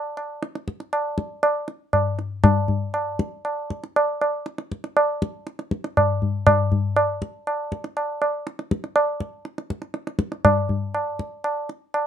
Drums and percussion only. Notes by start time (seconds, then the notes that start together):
0.17 tabla na
0.43 tabla te
0.55 tabla te
0.68 tabla ke
0.80 tabla te
0.93 tabla na
1.18 tabla ke
1.43 tabla na
1.68 tabla te
1.93 tabla na, tabla ge
2.19 tabla te
2.44 tabla na, tabla ge
2.68 tabla ge
2.94 tabla na
3.19 tabla ke
3.45 tabla na
3.70 tabla ke
3.84 tabla te
3.96 tabla na
4.21 tabla na
4.46 tabla te
4.58 tabla te
4.72 tabla ke
4.84 tabla te
4.97 tabla na
5.22 tabla ke
5.47 tabla te
5.59 tabla te
5.71 tabla ke
5.84 tabla te
5.97 tabla na, tabla ge
6.22 tabla ge
6.47 tabla na, tabla ge
6.72 tabla ge
6.96 tabla na
7.22 tabla ke
7.47 tabla na
7.72 tabla ke
7.84 tabla te
7.97 tabla na
8.22 tabla na
8.47 tabla te
8.59 tabla te
8.71 tabla ke
8.84 tabla te
8.96 tabla na
9.20 tabla ke
9.45 tabla te
9.58 tabla te
9.70 tabla ke
9.82 tabla te
9.94 tabla te
10.07 tabla te
10.19 tabla ke
10.32 tabla te
10.45 tabla na, tabla ge
10.69 tabla ge
10.94 tabla na
11.19 tabla ke
11.44 tabla na
11.69 tabla te
11.94 tabla na